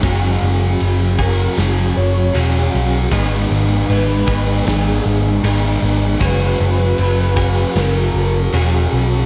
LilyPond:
<<
  \new Staff \with { instrumentName = "Soft synth lead" } { \time 4/4 \key fis \mixolydian \tempo 4 = 78 r4. ais'8 gis'8 cis''4 r8 | r4 b'4 gis'4. r8 | b'2 ais'4 gis'8. r16 | }
  \new Staff \with { instrumentName = "Overdriven electric guitar" } { \time 4/4 \key fis \mixolydian <fis cis' fis' gis'>4. <fis cis' fis' gis'>4. <fis cis' fis' gis'>4 | <gis b dis' gis'>4. <gis b dis' gis'>4. <gis b dis' gis'>4 | <fis cis' fis' gis'>4. <fis cis' fis' gis'>4. <fis cis' fis' gis'>4 | }
  \new Staff \with { instrumentName = "Clean electric guitar" } { \time 4/4 \key fis \mixolydian <fis cis' fis' gis'>4. <fis cis' fis' gis'>4. <fis cis' fis' gis'>4 | <gis, dis gis b dis' gis'>4. <gis, dis gis b dis' gis'>4. <gis, dis gis b dis' gis'>4 | <fis cis' fis' gis'>4. <fis cis' fis' gis'>4. <fis cis' fis' gis'>4 | }
  \new Staff \with { instrumentName = "Picked electric bass" } { \clef bass \time 4/4 \key fis \mixolydian fis,,8 fis,,8 fis,,4 fis,,8 fis,,8 e,,8 b,,8 | gis,,8 gis,,8 gis,,8 gis,,8 gis,,8 gis,,8 gis,,8 gis,,8 | fis,,8 fis,,8 fis,,4 fis,,8 fis,,8 e,,8 b,,8 | }
  \new DrumStaff \with { instrumentName = "Drums" } \drummode { \time 4/4 <cymc bd>4 cymc8 bd8 <cymc sn>4 cymc4 | <cymc bd>4 cymc8 bd8 <cymc sn>4 cymc4 | <cymc bd>4 cymc8 bd8 <cymc sn>4 cymc4 | }
>>